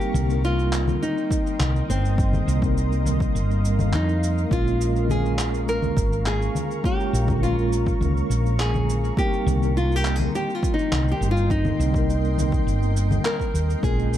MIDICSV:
0, 0, Header, 1, 6, 480
1, 0, Start_track
1, 0, Tempo, 582524
1, 1797, Time_signature, 4, 2, 24, 8
1, 11681, End_track
2, 0, Start_track
2, 0, Title_t, "Ambient pad"
2, 0, Program_c, 0, 92
2, 0, Note_on_c, 0, 70, 78
2, 0, Note_on_c, 0, 75, 72
2, 0, Note_on_c, 0, 79, 73
2, 0, Note_on_c, 0, 84, 89
2, 1778, Note_off_c, 0, 79, 0
2, 1796, Note_on_c, 0, 77, 70
2, 3683, Note_off_c, 0, 75, 0
2, 3684, Note_off_c, 0, 84, 0
2, 3717, Note_on_c, 0, 82, 74
2, 3717, Note_on_c, 0, 85, 87
2, 7524, Note_off_c, 0, 77, 0
2, 7524, Note_off_c, 0, 82, 0
2, 7524, Note_off_c, 0, 85, 0
2, 7558, Note_on_c, 0, 84, 83
2, 7559, Note_on_c, 0, 75, 66
2, 7560, Note_on_c, 0, 79, 70
2, 11365, Note_off_c, 0, 70, 0
2, 11365, Note_off_c, 0, 75, 0
2, 11365, Note_off_c, 0, 84, 0
2, 11366, Note_off_c, 0, 79, 0
2, 11396, Note_on_c, 0, 70, 75
2, 11396, Note_on_c, 0, 82, 71
2, 11397, Note_on_c, 0, 85, 82
2, 11400, Note_on_c, 0, 77, 74
2, 11681, Note_off_c, 0, 70, 0
2, 11681, Note_off_c, 0, 77, 0
2, 11681, Note_off_c, 0, 82, 0
2, 11681, Note_off_c, 0, 85, 0
2, 11681, End_track
3, 0, Start_track
3, 0, Title_t, "Nylon-string guitar"
3, 0, Program_c, 1, 24
3, 0, Note_on_c, 1, 67, 106
3, 365, Note_off_c, 1, 67, 0
3, 368, Note_on_c, 1, 65, 94
3, 845, Note_on_c, 1, 63, 92
3, 857, Note_off_c, 1, 65, 0
3, 1561, Note_off_c, 1, 63, 0
3, 1564, Note_on_c, 1, 60, 81
3, 2968, Note_off_c, 1, 60, 0
3, 3254, Note_on_c, 1, 63, 87
3, 3731, Note_on_c, 1, 65, 94
3, 3740, Note_off_c, 1, 63, 0
3, 4205, Note_off_c, 1, 65, 0
3, 4209, Note_on_c, 1, 68, 97
3, 4684, Note_off_c, 1, 68, 0
3, 4687, Note_on_c, 1, 70, 108
3, 5164, Note_off_c, 1, 70, 0
3, 5168, Note_on_c, 1, 68, 101
3, 5644, Note_off_c, 1, 68, 0
3, 5647, Note_on_c, 1, 67, 100
3, 6120, Note_off_c, 1, 67, 0
3, 6123, Note_on_c, 1, 65, 96
3, 7084, Note_off_c, 1, 65, 0
3, 7087, Note_on_c, 1, 68, 93
3, 7529, Note_off_c, 1, 68, 0
3, 7568, Note_on_c, 1, 67, 99
3, 8047, Note_off_c, 1, 67, 0
3, 8050, Note_on_c, 1, 65, 90
3, 8205, Note_off_c, 1, 65, 0
3, 8205, Note_on_c, 1, 67, 79
3, 8369, Note_off_c, 1, 67, 0
3, 8369, Note_on_c, 1, 68, 82
3, 8528, Note_off_c, 1, 68, 0
3, 8531, Note_on_c, 1, 67, 98
3, 8691, Note_off_c, 1, 67, 0
3, 8691, Note_on_c, 1, 65, 93
3, 8848, Note_on_c, 1, 63, 81
3, 8849, Note_off_c, 1, 65, 0
3, 9159, Note_on_c, 1, 67, 87
3, 9172, Note_off_c, 1, 63, 0
3, 9317, Note_off_c, 1, 67, 0
3, 9320, Note_on_c, 1, 65, 90
3, 9468, Note_off_c, 1, 65, 0
3, 9483, Note_on_c, 1, 63, 92
3, 10887, Note_off_c, 1, 63, 0
3, 10921, Note_on_c, 1, 70, 95
3, 11366, Note_off_c, 1, 70, 0
3, 11402, Note_on_c, 1, 68, 96
3, 11681, Note_off_c, 1, 68, 0
3, 11681, End_track
4, 0, Start_track
4, 0, Title_t, "Tine electric piano"
4, 0, Program_c, 2, 4
4, 0, Note_on_c, 2, 55, 86
4, 0, Note_on_c, 2, 58, 76
4, 0, Note_on_c, 2, 60, 81
4, 0, Note_on_c, 2, 63, 81
4, 0, Note_on_c, 2, 70, 100
4, 55, Control_c, 2, 64, 127
4, 203, Note_off_c, 2, 55, 0
4, 207, Note_off_c, 2, 58, 0
4, 212, Note_off_c, 2, 60, 0
4, 212, Note_on_c, 2, 55, 73
4, 214, Note_off_c, 2, 63, 0
4, 218, Note_off_c, 2, 70, 0
4, 224, Note_on_c, 2, 58, 68
4, 238, Note_on_c, 2, 60, 68
4, 254, Note_on_c, 2, 63, 65
4, 267, Note_on_c, 2, 70, 81
4, 1755, Note_off_c, 2, 55, 0
4, 1761, Note_off_c, 2, 58, 0
4, 1768, Note_off_c, 2, 60, 0
4, 1776, Note_off_c, 2, 63, 0
4, 1782, Note_off_c, 2, 70, 0
4, 1782, Note_on_c, 2, 55, 67
4, 1790, Note_on_c, 2, 58, 64
4, 1795, Note_on_c, 2, 60, 65
4, 1803, Note_on_c, 2, 63, 63
4, 1811, Note_on_c, 2, 75, 81
4, 2123, Note_off_c, 2, 55, 0
4, 2127, Note_off_c, 2, 58, 0
4, 2129, Note_off_c, 2, 60, 0
4, 2133, Note_on_c, 2, 55, 84
4, 2134, Note_off_c, 2, 63, 0
4, 2137, Note_off_c, 2, 75, 0
4, 2146, Note_on_c, 2, 58, 75
4, 2159, Note_on_c, 2, 60, 81
4, 2176, Note_on_c, 2, 63, 75
4, 2190, Note_on_c, 2, 70, 88
4, 3676, Note_off_c, 2, 55, 0
4, 3682, Note_off_c, 2, 58, 0
4, 3689, Note_off_c, 2, 60, 0
4, 3697, Note_off_c, 2, 63, 0
4, 3704, Note_off_c, 2, 70, 0
4, 3704, Note_on_c, 2, 56, 83
4, 3711, Note_on_c, 2, 58, 77
4, 3718, Note_on_c, 2, 61, 78
4, 3725, Note_on_c, 2, 65, 79
4, 3726, Control_c, 2, 64, 0
4, 3733, Note_on_c, 2, 70, 92
4, 3850, Control_c, 2, 64, 127
4, 4044, Note_off_c, 2, 56, 0
4, 4047, Note_off_c, 2, 58, 0
4, 4051, Note_off_c, 2, 61, 0
4, 4054, Note_off_c, 2, 65, 0
4, 4054, Note_on_c, 2, 56, 72
4, 4058, Note_off_c, 2, 70, 0
4, 4069, Note_on_c, 2, 58, 68
4, 4083, Note_on_c, 2, 61, 67
4, 4096, Note_on_c, 2, 65, 65
4, 4109, Note_on_c, 2, 70, 77
4, 5596, Note_off_c, 2, 56, 0
4, 5604, Note_off_c, 2, 58, 0
4, 5611, Note_off_c, 2, 61, 0
4, 5617, Note_off_c, 2, 65, 0
4, 5624, Note_off_c, 2, 70, 0
4, 5625, Note_on_c, 2, 56, 75
4, 5630, Note_on_c, 2, 58, 61
4, 5637, Note_on_c, 2, 61, 62
4, 5643, Note_on_c, 2, 65, 65
4, 5653, Note_on_c, 2, 73, 80
4, 5961, Note_off_c, 2, 56, 0
4, 5967, Note_off_c, 2, 58, 0
4, 5970, Note_off_c, 2, 61, 0
4, 5971, Note_on_c, 2, 56, 83
4, 5973, Note_off_c, 2, 65, 0
4, 5978, Note_off_c, 2, 73, 0
4, 5984, Note_on_c, 2, 58, 78
4, 5999, Note_on_c, 2, 61, 78
4, 6012, Note_on_c, 2, 65, 77
4, 6025, Note_on_c, 2, 70, 94
4, 7515, Note_off_c, 2, 56, 0
4, 7521, Note_off_c, 2, 58, 0
4, 7529, Note_off_c, 2, 61, 0
4, 7535, Note_off_c, 2, 65, 0
4, 7542, Note_off_c, 2, 70, 0
4, 7544, Note_on_c, 2, 55, 87
4, 7552, Note_on_c, 2, 58, 78
4, 7561, Note_on_c, 2, 60, 82
4, 7565, Note_on_c, 2, 63, 79
4, 7567, Control_c, 2, 64, 0
4, 7574, Note_on_c, 2, 70, 94
4, 7731, Control_c, 2, 64, 127
4, 7881, Note_off_c, 2, 55, 0
4, 7888, Note_off_c, 2, 58, 0
4, 7891, Note_on_c, 2, 55, 75
4, 7892, Note_off_c, 2, 60, 0
4, 7894, Note_off_c, 2, 63, 0
4, 7899, Note_off_c, 2, 70, 0
4, 7907, Note_on_c, 2, 58, 69
4, 7919, Note_on_c, 2, 60, 66
4, 7934, Note_on_c, 2, 63, 68
4, 7949, Note_on_c, 2, 70, 82
4, 9435, Note_off_c, 2, 55, 0
4, 9442, Note_off_c, 2, 58, 0
4, 9449, Note_off_c, 2, 60, 0
4, 9456, Note_off_c, 2, 63, 0
4, 9464, Note_off_c, 2, 70, 0
4, 9465, Note_on_c, 2, 55, 73
4, 9472, Note_on_c, 2, 58, 66
4, 9481, Note_on_c, 2, 60, 68
4, 9488, Note_on_c, 2, 63, 70
4, 9495, Note_on_c, 2, 75, 81
4, 9804, Note_off_c, 2, 55, 0
4, 9808, Note_off_c, 2, 58, 0
4, 9812, Note_off_c, 2, 60, 0
4, 9814, Note_on_c, 2, 55, 79
4, 9816, Note_off_c, 2, 63, 0
4, 9819, Note_off_c, 2, 75, 0
4, 9831, Note_on_c, 2, 58, 77
4, 9845, Note_on_c, 2, 60, 75
4, 9858, Note_on_c, 2, 63, 73
4, 9872, Note_on_c, 2, 70, 91
4, 11356, Note_off_c, 2, 55, 0
4, 11365, Note_off_c, 2, 58, 0
4, 11372, Note_off_c, 2, 60, 0
4, 11378, Note_off_c, 2, 63, 0
4, 11383, Note_on_c, 2, 56, 88
4, 11385, Note_off_c, 2, 70, 0
4, 11391, Note_on_c, 2, 58, 82
4, 11398, Note_on_c, 2, 61, 82
4, 11405, Note_on_c, 2, 65, 81
4, 11409, Control_c, 2, 64, 0
4, 11413, Note_on_c, 2, 70, 94
4, 11539, Control_c, 2, 64, 127
4, 11681, Note_off_c, 2, 56, 0
4, 11681, Note_off_c, 2, 58, 0
4, 11681, Note_off_c, 2, 61, 0
4, 11681, Note_off_c, 2, 65, 0
4, 11681, Note_off_c, 2, 70, 0
4, 11681, End_track
5, 0, Start_track
5, 0, Title_t, "Fretless electric bass"
5, 0, Program_c, 3, 35
5, 118, Note_on_c, 3, 36, 94
5, 778, Note_off_c, 3, 36, 0
5, 1317, Note_on_c, 3, 36, 82
5, 1483, Note_off_c, 3, 36, 0
5, 1560, Note_on_c, 3, 31, 93
5, 1979, Note_off_c, 3, 31, 0
5, 2040, Note_on_c, 3, 36, 94
5, 2699, Note_off_c, 3, 36, 0
5, 2760, Note_on_c, 3, 31, 91
5, 3241, Note_on_c, 3, 41, 89
5, 3253, Note_off_c, 3, 31, 0
5, 3660, Note_off_c, 3, 41, 0
5, 3718, Note_on_c, 3, 34, 90
5, 4858, Note_off_c, 3, 34, 0
5, 4917, Note_on_c, 3, 32, 78
5, 5338, Note_off_c, 3, 32, 0
5, 5877, Note_on_c, 3, 34, 88
5, 6538, Note_off_c, 3, 34, 0
5, 6597, Note_on_c, 3, 37, 82
5, 6763, Note_off_c, 3, 37, 0
5, 6838, Note_on_c, 3, 34, 79
5, 7498, Note_off_c, 3, 34, 0
5, 7799, Note_on_c, 3, 36, 96
5, 8458, Note_off_c, 3, 36, 0
5, 8997, Note_on_c, 3, 36, 83
5, 9163, Note_off_c, 3, 36, 0
5, 9236, Note_on_c, 3, 31, 98
5, 9657, Note_off_c, 3, 31, 0
5, 9719, Note_on_c, 3, 36, 94
5, 10378, Note_off_c, 3, 36, 0
5, 10438, Note_on_c, 3, 31, 97
5, 10858, Note_off_c, 3, 31, 0
5, 11156, Note_on_c, 3, 39, 72
5, 11322, Note_off_c, 3, 39, 0
5, 11396, Note_on_c, 3, 34, 85
5, 11681, Note_off_c, 3, 34, 0
5, 11681, End_track
6, 0, Start_track
6, 0, Title_t, "Drums"
6, 9, Note_on_c, 9, 69, 22
6, 91, Note_off_c, 9, 69, 0
6, 119, Note_on_c, 9, 64, 70
6, 126, Note_on_c, 9, 69, 72
6, 201, Note_off_c, 9, 64, 0
6, 208, Note_off_c, 9, 69, 0
6, 247, Note_on_c, 9, 69, 33
6, 330, Note_off_c, 9, 69, 0
6, 365, Note_on_c, 9, 69, 42
6, 448, Note_off_c, 9, 69, 0
6, 487, Note_on_c, 9, 69, 21
6, 569, Note_off_c, 9, 69, 0
6, 599, Note_on_c, 9, 39, 76
6, 606, Note_on_c, 9, 69, 72
6, 681, Note_off_c, 9, 39, 0
6, 688, Note_off_c, 9, 69, 0
6, 722, Note_on_c, 9, 64, 69
6, 729, Note_on_c, 9, 69, 32
6, 804, Note_off_c, 9, 64, 0
6, 812, Note_off_c, 9, 69, 0
6, 847, Note_on_c, 9, 69, 43
6, 930, Note_off_c, 9, 69, 0
6, 969, Note_on_c, 9, 69, 19
6, 1052, Note_off_c, 9, 69, 0
6, 1076, Note_on_c, 9, 36, 100
6, 1085, Note_on_c, 9, 69, 75
6, 1159, Note_off_c, 9, 36, 0
6, 1167, Note_off_c, 9, 69, 0
6, 1208, Note_on_c, 9, 69, 33
6, 1290, Note_off_c, 9, 69, 0
6, 1319, Note_on_c, 9, 39, 70
6, 1319, Note_on_c, 9, 64, 73
6, 1327, Note_on_c, 9, 69, 45
6, 1402, Note_off_c, 9, 39, 0
6, 1402, Note_off_c, 9, 64, 0
6, 1409, Note_off_c, 9, 69, 0
6, 1450, Note_on_c, 9, 69, 23
6, 1532, Note_off_c, 9, 69, 0
6, 1568, Note_on_c, 9, 69, 78
6, 1650, Note_off_c, 9, 69, 0
6, 1690, Note_on_c, 9, 69, 30
6, 1772, Note_off_c, 9, 69, 0
6, 1797, Note_on_c, 9, 36, 113
6, 1806, Note_on_c, 9, 69, 45
6, 1880, Note_off_c, 9, 36, 0
6, 1889, Note_off_c, 9, 69, 0
6, 1923, Note_on_c, 9, 64, 69
6, 1930, Note_on_c, 9, 69, 21
6, 2005, Note_off_c, 9, 64, 0
6, 2012, Note_off_c, 9, 69, 0
6, 2047, Note_on_c, 9, 69, 71
6, 2129, Note_off_c, 9, 69, 0
6, 2160, Note_on_c, 9, 36, 98
6, 2169, Note_on_c, 9, 69, 33
6, 2242, Note_off_c, 9, 36, 0
6, 2251, Note_off_c, 9, 69, 0
6, 2287, Note_on_c, 9, 69, 44
6, 2369, Note_off_c, 9, 69, 0
6, 2408, Note_on_c, 9, 69, 22
6, 2490, Note_off_c, 9, 69, 0
6, 2518, Note_on_c, 9, 64, 65
6, 2525, Note_on_c, 9, 69, 66
6, 2601, Note_off_c, 9, 64, 0
6, 2608, Note_off_c, 9, 69, 0
6, 2639, Note_on_c, 9, 36, 98
6, 2651, Note_on_c, 9, 69, 33
6, 2722, Note_off_c, 9, 36, 0
6, 2734, Note_off_c, 9, 69, 0
6, 2767, Note_on_c, 9, 69, 43
6, 2850, Note_off_c, 9, 69, 0
6, 2892, Note_on_c, 9, 69, 21
6, 2975, Note_off_c, 9, 69, 0
6, 3006, Note_on_c, 9, 69, 70
6, 3089, Note_off_c, 9, 69, 0
6, 3122, Note_on_c, 9, 64, 69
6, 3129, Note_on_c, 9, 69, 32
6, 3205, Note_off_c, 9, 64, 0
6, 3212, Note_off_c, 9, 69, 0
6, 3240, Note_on_c, 9, 39, 65
6, 3247, Note_on_c, 9, 69, 42
6, 3322, Note_off_c, 9, 39, 0
6, 3330, Note_off_c, 9, 69, 0
6, 3369, Note_on_c, 9, 69, 22
6, 3452, Note_off_c, 9, 69, 0
6, 3488, Note_on_c, 9, 69, 74
6, 3571, Note_off_c, 9, 69, 0
6, 3609, Note_on_c, 9, 69, 31
6, 3691, Note_off_c, 9, 69, 0
6, 3717, Note_on_c, 9, 36, 107
6, 3727, Note_on_c, 9, 69, 43
6, 3799, Note_off_c, 9, 36, 0
6, 3809, Note_off_c, 9, 69, 0
6, 3851, Note_on_c, 9, 69, 21
6, 3933, Note_off_c, 9, 69, 0
6, 3964, Note_on_c, 9, 69, 72
6, 4047, Note_off_c, 9, 69, 0
6, 4088, Note_on_c, 9, 69, 31
6, 4170, Note_off_c, 9, 69, 0
6, 4198, Note_on_c, 9, 64, 67
6, 4206, Note_on_c, 9, 69, 38
6, 4281, Note_off_c, 9, 64, 0
6, 4288, Note_off_c, 9, 69, 0
6, 4330, Note_on_c, 9, 69, 22
6, 4413, Note_off_c, 9, 69, 0
6, 4438, Note_on_c, 9, 39, 65
6, 4445, Note_on_c, 9, 69, 74
6, 4520, Note_off_c, 9, 39, 0
6, 4527, Note_off_c, 9, 69, 0
6, 4566, Note_on_c, 9, 69, 31
6, 4649, Note_off_c, 9, 69, 0
6, 4683, Note_on_c, 9, 69, 44
6, 4766, Note_off_c, 9, 69, 0
6, 4798, Note_on_c, 9, 64, 62
6, 4805, Note_on_c, 9, 69, 20
6, 4881, Note_off_c, 9, 64, 0
6, 4888, Note_off_c, 9, 69, 0
6, 4916, Note_on_c, 9, 36, 97
6, 4924, Note_on_c, 9, 69, 72
6, 4999, Note_off_c, 9, 36, 0
6, 5007, Note_off_c, 9, 69, 0
6, 5047, Note_on_c, 9, 69, 30
6, 5130, Note_off_c, 9, 69, 0
6, 5158, Note_on_c, 9, 39, 64
6, 5166, Note_on_c, 9, 69, 42
6, 5241, Note_off_c, 9, 39, 0
6, 5248, Note_off_c, 9, 69, 0
6, 5290, Note_on_c, 9, 69, 22
6, 5372, Note_off_c, 9, 69, 0
6, 5398, Note_on_c, 9, 64, 68
6, 5405, Note_on_c, 9, 69, 71
6, 5481, Note_off_c, 9, 64, 0
6, 5488, Note_off_c, 9, 69, 0
6, 5530, Note_on_c, 9, 69, 29
6, 5612, Note_off_c, 9, 69, 0
6, 5637, Note_on_c, 9, 36, 103
6, 5649, Note_on_c, 9, 69, 42
6, 5719, Note_off_c, 9, 36, 0
6, 5731, Note_off_c, 9, 69, 0
6, 5770, Note_on_c, 9, 69, 20
6, 5852, Note_off_c, 9, 69, 0
6, 5888, Note_on_c, 9, 69, 67
6, 5970, Note_off_c, 9, 69, 0
6, 6000, Note_on_c, 9, 36, 92
6, 6004, Note_on_c, 9, 64, 73
6, 6012, Note_on_c, 9, 69, 28
6, 6082, Note_off_c, 9, 36, 0
6, 6087, Note_off_c, 9, 64, 0
6, 6094, Note_off_c, 9, 69, 0
6, 6126, Note_on_c, 9, 69, 41
6, 6208, Note_off_c, 9, 69, 0
6, 6250, Note_on_c, 9, 69, 19
6, 6332, Note_off_c, 9, 69, 0
6, 6366, Note_on_c, 9, 69, 69
6, 6448, Note_off_c, 9, 69, 0
6, 6481, Note_on_c, 9, 36, 97
6, 6492, Note_on_c, 9, 69, 30
6, 6563, Note_off_c, 9, 36, 0
6, 6574, Note_off_c, 9, 69, 0
6, 6602, Note_on_c, 9, 64, 69
6, 6609, Note_on_c, 9, 69, 39
6, 6684, Note_off_c, 9, 64, 0
6, 6691, Note_off_c, 9, 69, 0
6, 6733, Note_on_c, 9, 69, 19
6, 6815, Note_off_c, 9, 69, 0
6, 6847, Note_on_c, 9, 69, 69
6, 6930, Note_off_c, 9, 69, 0
6, 6972, Note_on_c, 9, 69, 30
6, 7054, Note_off_c, 9, 69, 0
6, 7084, Note_on_c, 9, 39, 70
6, 7091, Note_on_c, 9, 69, 41
6, 7166, Note_off_c, 9, 39, 0
6, 7173, Note_off_c, 9, 69, 0
6, 7203, Note_on_c, 9, 64, 76
6, 7210, Note_on_c, 9, 69, 21
6, 7285, Note_off_c, 9, 64, 0
6, 7293, Note_off_c, 9, 69, 0
6, 7330, Note_on_c, 9, 69, 66
6, 7412, Note_off_c, 9, 69, 0
6, 7452, Note_on_c, 9, 69, 29
6, 7534, Note_off_c, 9, 69, 0
6, 7557, Note_on_c, 9, 36, 109
6, 7569, Note_on_c, 9, 69, 41
6, 7640, Note_off_c, 9, 36, 0
6, 7652, Note_off_c, 9, 69, 0
6, 7690, Note_on_c, 9, 69, 20
6, 7772, Note_off_c, 9, 69, 0
6, 7801, Note_on_c, 9, 64, 76
6, 7809, Note_on_c, 9, 69, 66
6, 7884, Note_off_c, 9, 64, 0
6, 7891, Note_off_c, 9, 69, 0
6, 7932, Note_on_c, 9, 69, 28
6, 8014, Note_off_c, 9, 69, 0
6, 8050, Note_on_c, 9, 69, 39
6, 8133, Note_off_c, 9, 69, 0
6, 8172, Note_on_c, 9, 69, 20
6, 8255, Note_off_c, 9, 69, 0
6, 8279, Note_on_c, 9, 39, 69
6, 8287, Note_on_c, 9, 69, 65
6, 8362, Note_off_c, 9, 39, 0
6, 8369, Note_off_c, 9, 69, 0
6, 8403, Note_on_c, 9, 64, 72
6, 8410, Note_on_c, 9, 69, 30
6, 8485, Note_off_c, 9, 64, 0
6, 8493, Note_off_c, 9, 69, 0
6, 8528, Note_on_c, 9, 69, 42
6, 8611, Note_off_c, 9, 69, 0
6, 8650, Note_on_c, 9, 69, 19
6, 8733, Note_off_c, 9, 69, 0
6, 8757, Note_on_c, 9, 36, 98
6, 8768, Note_on_c, 9, 69, 68
6, 8839, Note_off_c, 9, 36, 0
6, 8850, Note_off_c, 9, 69, 0
6, 8890, Note_on_c, 9, 69, 29
6, 8972, Note_off_c, 9, 69, 0
6, 9002, Note_on_c, 9, 39, 70
6, 9002, Note_on_c, 9, 64, 76
6, 9010, Note_on_c, 9, 69, 40
6, 9085, Note_off_c, 9, 39, 0
6, 9085, Note_off_c, 9, 64, 0
6, 9092, Note_off_c, 9, 69, 0
6, 9130, Note_on_c, 9, 69, 21
6, 9213, Note_off_c, 9, 69, 0
6, 9246, Note_on_c, 9, 69, 65
6, 9329, Note_off_c, 9, 69, 0
6, 9367, Note_on_c, 9, 69, 29
6, 9449, Note_off_c, 9, 69, 0
6, 9477, Note_on_c, 9, 36, 103
6, 9484, Note_on_c, 9, 69, 41
6, 9559, Note_off_c, 9, 36, 0
6, 9566, Note_off_c, 9, 69, 0
6, 9599, Note_on_c, 9, 64, 83
6, 9606, Note_on_c, 9, 69, 21
6, 9682, Note_off_c, 9, 64, 0
6, 9689, Note_off_c, 9, 69, 0
6, 9727, Note_on_c, 9, 69, 68
6, 9809, Note_off_c, 9, 69, 0
6, 9839, Note_on_c, 9, 36, 92
6, 9850, Note_on_c, 9, 69, 28
6, 9922, Note_off_c, 9, 36, 0
6, 9932, Note_off_c, 9, 69, 0
6, 9968, Note_on_c, 9, 69, 40
6, 10051, Note_off_c, 9, 69, 0
6, 10089, Note_on_c, 9, 69, 20
6, 10172, Note_off_c, 9, 69, 0
6, 10201, Note_on_c, 9, 64, 75
6, 10208, Note_on_c, 9, 69, 66
6, 10283, Note_off_c, 9, 64, 0
6, 10291, Note_off_c, 9, 69, 0
6, 10319, Note_on_c, 9, 36, 92
6, 10329, Note_on_c, 9, 69, 31
6, 10401, Note_off_c, 9, 36, 0
6, 10412, Note_off_c, 9, 69, 0
6, 10447, Note_on_c, 9, 69, 40
6, 10530, Note_off_c, 9, 69, 0
6, 10568, Note_on_c, 9, 69, 19
6, 10650, Note_off_c, 9, 69, 0
6, 10684, Note_on_c, 9, 69, 65
6, 10766, Note_off_c, 9, 69, 0
6, 10802, Note_on_c, 9, 64, 76
6, 10809, Note_on_c, 9, 69, 30
6, 10884, Note_off_c, 9, 64, 0
6, 10891, Note_off_c, 9, 69, 0
6, 10918, Note_on_c, 9, 39, 74
6, 10925, Note_on_c, 9, 69, 40
6, 11000, Note_off_c, 9, 39, 0
6, 11007, Note_off_c, 9, 69, 0
6, 11039, Note_on_c, 9, 36, 54
6, 11049, Note_on_c, 9, 69, 20
6, 11121, Note_off_c, 9, 36, 0
6, 11131, Note_off_c, 9, 69, 0
6, 11165, Note_on_c, 9, 69, 73
6, 11247, Note_off_c, 9, 69, 0
6, 11289, Note_on_c, 9, 69, 30
6, 11371, Note_off_c, 9, 69, 0
6, 11396, Note_on_c, 9, 36, 112
6, 11407, Note_on_c, 9, 69, 43
6, 11478, Note_off_c, 9, 36, 0
6, 11489, Note_off_c, 9, 69, 0
6, 11530, Note_on_c, 9, 69, 22
6, 11612, Note_off_c, 9, 69, 0
6, 11646, Note_on_c, 9, 69, 72
6, 11681, Note_off_c, 9, 69, 0
6, 11681, End_track
0, 0, End_of_file